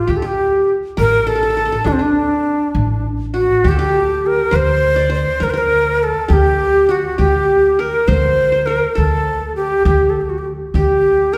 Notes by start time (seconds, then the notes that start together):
Already playing: F4
0.07 D2 G4
0.17 A4
0.22 G4
0.97 A1 A#4
1.27 A4
1.35 A4
1.43 A4
1.50 A4
1.57 A4
1.65 A4
1.72 A4
1.84 D2 D4
1.93 C4
1.99 D4
2.75 A1
3.34 F#4
3.64 D2 G4
3.69 G4 A4
3.79 G4
4.26 A#4
4.51 D2 C5
4.56 C5
4.96 D5
5.10 C5
5.14 C5
5.40 D2 A#4
5.50 A#4 C5
5.58 A#4
6.03 A4
6.28 D2 G4
6.33 G4
6.89 F#4
7.18 D2 G4
7.79 A#4
8.08 D2 C5
8.52 C5
8.66 A#4
8.95 D2 A4
9.56 G4
9.85 D2 G4
10.10 A4
10.21 G4
10.29 F#4
10.38 G4
10.74 D2 G4
11.33 A#4